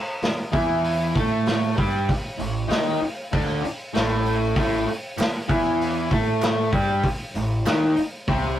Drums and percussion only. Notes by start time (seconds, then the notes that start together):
0.22 snare, open hi-hat
0.53 kick, open hi-hat
0.84 open hi-hat
1.15 kick, open hi-hat
1.46 snare, open hi-hat
1.78 kick, open hi-hat
2.09 kick, open hi-hat
2.39 open hi-hat
2.70 snare, open hi-hat
3.02 open hi-hat
3.33 kick, open hi-hat
3.64 open hi-hat
3.95 snare, open hi-hat
4.26 open hi-hat
4.56 kick, open hi-hat
4.88 open hi-hat
5.19 snare, clap, open hi-hat
5.49 kick, open hi-hat
5.81 open hi-hat
6.11 kick, open hi-hat
6.42 snare, clap, open hi-hat
6.72 kick, open hi-hat
7.04 kick, open hi-hat
7.35 open hi-hat
7.65 snare, clap, open hi-hat
7.96 open hi-hat
8.27 kick, open hi-hat